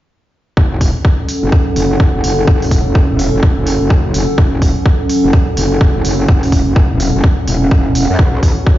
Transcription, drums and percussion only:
0, 0, Header, 1, 2, 480
1, 0, Start_track
1, 0, Key_signature, 3, "minor"
1, 0, Tempo, 476190
1, 576, Time_signature, 4, 2, 24, 8
1, 8851, End_track
2, 0, Start_track
2, 0, Title_t, "Drums"
2, 575, Note_on_c, 9, 36, 107
2, 676, Note_off_c, 9, 36, 0
2, 815, Note_on_c, 9, 36, 55
2, 816, Note_on_c, 9, 46, 94
2, 916, Note_off_c, 9, 36, 0
2, 916, Note_off_c, 9, 46, 0
2, 1055, Note_on_c, 9, 36, 105
2, 1156, Note_off_c, 9, 36, 0
2, 1295, Note_on_c, 9, 46, 88
2, 1396, Note_off_c, 9, 46, 0
2, 1535, Note_on_c, 9, 36, 106
2, 1636, Note_off_c, 9, 36, 0
2, 1776, Note_on_c, 9, 46, 96
2, 1877, Note_off_c, 9, 46, 0
2, 2015, Note_on_c, 9, 36, 108
2, 2116, Note_off_c, 9, 36, 0
2, 2256, Note_on_c, 9, 46, 102
2, 2357, Note_off_c, 9, 46, 0
2, 2495, Note_on_c, 9, 36, 117
2, 2596, Note_off_c, 9, 36, 0
2, 2644, Note_on_c, 9, 46, 61
2, 2735, Note_on_c, 9, 36, 61
2, 2736, Note_off_c, 9, 46, 0
2, 2736, Note_on_c, 9, 46, 97
2, 2836, Note_off_c, 9, 36, 0
2, 2837, Note_off_c, 9, 46, 0
2, 2975, Note_on_c, 9, 36, 114
2, 3075, Note_off_c, 9, 36, 0
2, 3216, Note_on_c, 9, 46, 88
2, 3317, Note_off_c, 9, 46, 0
2, 3455, Note_on_c, 9, 36, 118
2, 3555, Note_off_c, 9, 36, 0
2, 3696, Note_on_c, 9, 46, 99
2, 3796, Note_off_c, 9, 46, 0
2, 3934, Note_on_c, 9, 36, 116
2, 4035, Note_off_c, 9, 36, 0
2, 4175, Note_on_c, 9, 46, 99
2, 4276, Note_off_c, 9, 46, 0
2, 4414, Note_on_c, 9, 36, 114
2, 4515, Note_off_c, 9, 36, 0
2, 4655, Note_on_c, 9, 36, 59
2, 4655, Note_on_c, 9, 46, 98
2, 4755, Note_off_c, 9, 36, 0
2, 4756, Note_off_c, 9, 46, 0
2, 4895, Note_on_c, 9, 36, 118
2, 4995, Note_off_c, 9, 36, 0
2, 5135, Note_on_c, 9, 46, 97
2, 5236, Note_off_c, 9, 46, 0
2, 5375, Note_on_c, 9, 36, 109
2, 5475, Note_off_c, 9, 36, 0
2, 5615, Note_on_c, 9, 46, 103
2, 5716, Note_off_c, 9, 46, 0
2, 5855, Note_on_c, 9, 36, 118
2, 5956, Note_off_c, 9, 36, 0
2, 6095, Note_on_c, 9, 46, 97
2, 6196, Note_off_c, 9, 46, 0
2, 6335, Note_on_c, 9, 36, 110
2, 6436, Note_off_c, 9, 36, 0
2, 6482, Note_on_c, 9, 46, 59
2, 6575, Note_off_c, 9, 46, 0
2, 6575, Note_on_c, 9, 36, 59
2, 6575, Note_on_c, 9, 46, 98
2, 6676, Note_off_c, 9, 36, 0
2, 6676, Note_off_c, 9, 46, 0
2, 6815, Note_on_c, 9, 36, 113
2, 6915, Note_off_c, 9, 36, 0
2, 7055, Note_on_c, 9, 46, 92
2, 7156, Note_off_c, 9, 46, 0
2, 7295, Note_on_c, 9, 36, 110
2, 7396, Note_off_c, 9, 36, 0
2, 7535, Note_on_c, 9, 46, 105
2, 7636, Note_off_c, 9, 46, 0
2, 7775, Note_on_c, 9, 36, 116
2, 7876, Note_off_c, 9, 36, 0
2, 8015, Note_on_c, 9, 46, 105
2, 8116, Note_off_c, 9, 46, 0
2, 8255, Note_on_c, 9, 36, 113
2, 8355, Note_off_c, 9, 36, 0
2, 8495, Note_on_c, 9, 36, 59
2, 8495, Note_on_c, 9, 46, 98
2, 8595, Note_off_c, 9, 36, 0
2, 8596, Note_off_c, 9, 46, 0
2, 8735, Note_on_c, 9, 36, 108
2, 8836, Note_off_c, 9, 36, 0
2, 8851, End_track
0, 0, End_of_file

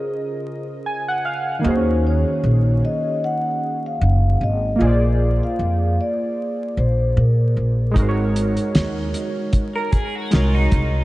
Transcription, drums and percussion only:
0, 0, Header, 1, 2, 480
1, 0, Start_track
1, 0, Tempo, 789474
1, 999, Time_signature, 4, 2, 24, 8
1, 6712, End_track
2, 0, Start_track
2, 0, Title_t, "Drums"
2, 4839, Note_on_c, 9, 36, 100
2, 4839, Note_on_c, 9, 42, 73
2, 4900, Note_off_c, 9, 36, 0
2, 4900, Note_off_c, 9, 42, 0
2, 5083, Note_on_c, 9, 42, 69
2, 5144, Note_off_c, 9, 42, 0
2, 5209, Note_on_c, 9, 42, 43
2, 5269, Note_off_c, 9, 42, 0
2, 5319, Note_on_c, 9, 42, 72
2, 5322, Note_on_c, 9, 38, 110
2, 5380, Note_off_c, 9, 42, 0
2, 5383, Note_off_c, 9, 38, 0
2, 5558, Note_on_c, 9, 42, 60
2, 5619, Note_off_c, 9, 42, 0
2, 5792, Note_on_c, 9, 42, 78
2, 5796, Note_on_c, 9, 36, 89
2, 5853, Note_off_c, 9, 42, 0
2, 5857, Note_off_c, 9, 36, 0
2, 6034, Note_on_c, 9, 42, 49
2, 6036, Note_on_c, 9, 36, 73
2, 6095, Note_off_c, 9, 42, 0
2, 6097, Note_off_c, 9, 36, 0
2, 6271, Note_on_c, 9, 42, 70
2, 6282, Note_on_c, 9, 38, 106
2, 6331, Note_off_c, 9, 42, 0
2, 6343, Note_off_c, 9, 38, 0
2, 6516, Note_on_c, 9, 42, 61
2, 6519, Note_on_c, 9, 36, 92
2, 6576, Note_off_c, 9, 42, 0
2, 6580, Note_off_c, 9, 36, 0
2, 6712, End_track
0, 0, End_of_file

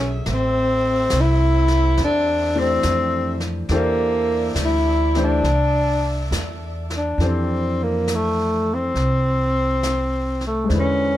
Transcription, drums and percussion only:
0, 0, Header, 1, 2, 480
1, 0, Start_track
1, 0, Tempo, 860832
1, 140, Time_signature, 4, 2, 24, 8
1, 2541, Tempo, 874636
1, 6170, End_track
2, 0, Start_track
2, 0, Title_t, "Drums"
2, 144, Note_on_c, 9, 25, 42
2, 144, Note_on_c, 9, 38, 37
2, 200, Note_off_c, 9, 38, 0
2, 613, Note_on_c, 9, 38, 49
2, 613, Note_on_c, 9, 44, 46
2, 669, Note_off_c, 9, 38, 0
2, 669, Note_off_c, 9, 44, 0
2, 936, Note_on_c, 9, 38, 28
2, 992, Note_off_c, 9, 38, 0
2, 1100, Note_off_c, 9, 25, 0
2, 1100, Note_on_c, 9, 25, 37
2, 1100, Note_on_c, 9, 38, 34
2, 1156, Note_off_c, 9, 38, 0
2, 1578, Note_on_c, 9, 38, 50
2, 1578, Note_on_c, 9, 44, 43
2, 1634, Note_off_c, 9, 38, 0
2, 1634, Note_off_c, 9, 44, 0
2, 1898, Note_on_c, 9, 38, 30
2, 1953, Note_off_c, 9, 38, 0
2, 2056, Note_off_c, 9, 25, 0
2, 2056, Note_on_c, 9, 25, 44
2, 2056, Note_on_c, 9, 38, 33
2, 2112, Note_off_c, 9, 38, 0
2, 2540, Note_on_c, 9, 38, 48
2, 2540, Note_on_c, 9, 44, 42
2, 2595, Note_off_c, 9, 38, 0
2, 2595, Note_off_c, 9, 44, 0
2, 2865, Note_on_c, 9, 38, 29
2, 2920, Note_off_c, 9, 38, 0
2, 3027, Note_off_c, 9, 25, 0
2, 3027, Note_on_c, 9, 25, 36
2, 3027, Note_on_c, 9, 38, 34
2, 3082, Note_off_c, 9, 38, 0
2, 3510, Note_on_c, 9, 38, 48
2, 3510, Note_on_c, 9, 44, 44
2, 3565, Note_off_c, 9, 38, 0
2, 3565, Note_off_c, 9, 44, 0
2, 3828, Note_on_c, 9, 38, 31
2, 3883, Note_off_c, 9, 38, 0
2, 3990, Note_off_c, 9, 25, 0
2, 3990, Note_on_c, 9, 25, 29
2, 3990, Note_on_c, 9, 38, 23
2, 4045, Note_off_c, 9, 38, 0
2, 4472, Note_on_c, 9, 38, 37
2, 4472, Note_on_c, 9, 44, 43
2, 4527, Note_off_c, 9, 38, 0
2, 4527, Note_off_c, 9, 44, 0
2, 4954, Note_off_c, 9, 25, 0
2, 4954, Note_on_c, 9, 25, 29
2, 4954, Note_on_c, 9, 38, 22
2, 5009, Note_off_c, 9, 38, 0
2, 5435, Note_on_c, 9, 38, 40
2, 5435, Note_on_c, 9, 44, 49
2, 5490, Note_off_c, 9, 38, 0
2, 5490, Note_off_c, 9, 44, 0
2, 5752, Note_on_c, 9, 38, 22
2, 5806, Note_off_c, 9, 38, 0
2, 5911, Note_off_c, 9, 25, 0
2, 5911, Note_on_c, 9, 25, 30
2, 5911, Note_on_c, 9, 38, 26
2, 5966, Note_off_c, 9, 38, 0
2, 6170, Note_off_c, 9, 25, 0
2, 6170, End_track
0, 0, End_of_file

